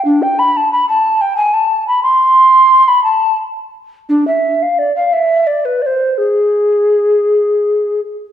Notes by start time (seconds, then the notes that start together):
0.05 D4
0.22 G5
0.39 B5
0.57 A5
0.72 B5
0.89 A5
1.21 G5
1.37 G#5
1.54 A5
1.88 B5
2.03 C6
2.88 B5
3.04 A5
4.09 D4
4.27 E5
4.62 F5
4.79 D5
4.96 F5
5.13 E5
5.47 D5
5.65 B4
5.82 D5
5.86 C5
6.18 G#4